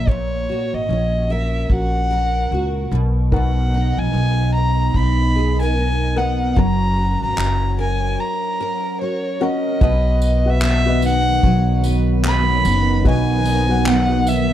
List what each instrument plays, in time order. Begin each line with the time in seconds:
Already playing: upright bass A#1, violin E5
0.07 steel-string acoustic guitar A#2, violin C#5, kick
0.49 steel-string acoustic guitar F#4
0.73 upright bass G#1, violin D#5
0.89 upright bass A#1, steel-string acoustic guitar C#4
1.30 steel-string acoustic guitar A#4, violin E5
1.70 upright bass A#1, steel-string acoustic guitar F#4, violin F#5, kick
2.11 steel-string acoustic guitar A#4
2.51 upright bass C#2, steel-string acoustic guitar F#4
2.91 upright bass B1, steel-string acoustic guitar B2
3.31 steel-string acoustic guitar B2, upright piano D#4 A#4 B4 F#5, violin F#5, kick
3.74 steel-string acoustic guitar D#4
3.97 upright bass A#1, violin G#5
4.13 upright bass B1, steel-string acoustic guitar B3
4.55 violin A#5
4.94 upright bass B1, steel-string acoustic guitar D#4, violin B5, kick
5.36 steel-string acoustic guitar G#4
5.60 steel-string acoustic guitar A#4, violin G#5
5.76 steel-string acoustic guitar D#4
6.15 steel-string acoustic guitar B3, upright piano D#4 A#4 B4 F#5, violin F#5
6.56 upright bass F#1, steel-string acoustic guitar F#3, upright piano C#4 F#4 A#4 F#5, violin A#5, kick
6.97 steel-string acoustic guitar F#4
7.22 upright bass G#1, violin A#5
7.37 upright bass F#1, steel-string acoustic guitar C#4, clap
7.79 steel-string acoustic guitar A#4, violin G#5
8.18 steel-string acoustic guitar F#4, violin A#5
8.60 steel-string acoustic guitar A#4
9.01 steel-string acoustic guitar F#4, violin C#5
9.40 upright piano C#4 F#4 A#4 F#5, steel-string acoustic guitar C#4, violin D#5
9.80 upright bass B1, steel-string acoustic guitar B2 B4, ambient pad D#3 F#3 B3, upright piano F#4 B4 D#5, kick
10.22 tambourine
10.46 upright piano F#4 B4 F#5, violin E5
10.62 steel-string acoustic guitar B3, clap
10.86 upright piano F#4 B4 D#5
11.02 steel-string acoustic guitar D#4, violin F#5, tambourine
11.43 upright bass B1, steel-string acoustic guitar F#3, kick
11.84 steel-string acoustic guitar B4, tambourine
12.25 steel-string acoustic guitar B3, violin B5, clap
12.65 upright bass F#1, steel-string acoustic guitar D#4, tambourine
13.04 upright bass B1, steel-string acoustic guitar B2 B4, ambient pad B3, upright piano F#4 B4 D#5, kick
13.09 violin G#5
13.45 steel-string acoustic guitar D#4, tambourine
13.69 upright piano F#4 B4 F#5
13.86 steel-string acoustic guitar B3, violin F#5, clap
14.09 upright piano F#4 B4 F#5
14.27 violin E5, tambourine